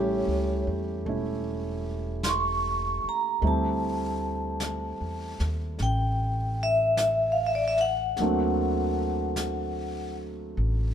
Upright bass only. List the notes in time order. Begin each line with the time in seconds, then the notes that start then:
Already playing: A1
0.28 C#2
0.67 E2
1.06 E1
3.04 muted upright bass stroke
3.42 D2
5.01 E2
5.40 D#2
5.80 A1
8.19 D2
10.57 A1